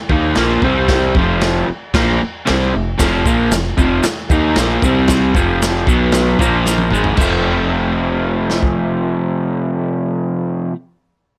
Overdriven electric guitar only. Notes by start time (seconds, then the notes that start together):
0.10 D#3 A#3 D#4
0.37 A#2 F3 A#3
0.63 C3 G3 C4
1.16 F2 C3 F3
1.68 muted overdriven electric guitar stroke
1.94 A#2 F3 A#3
2.22 muted overdriven electric guitar stroke
2.46 C3 G3 C4
2.75 F2 C3
2.99 F2 C3 F3
3.26 A#2 F3 A#3
3.53 F2 C3
3.77 F2 C3 F3
4.07 muted overdriven electric guitar stroke
4.31 D#3 A#3 D#4
4.59 A#2 F3 A#3
4.83 C3 G3 C4
5.35 F2 C3 F3
5.88 B2 F#3 B3
6.39 A#2 F3 A#3
6.92 G#2 D#3 G#3
7.17 F2 C3 F3
7.21 A3 C4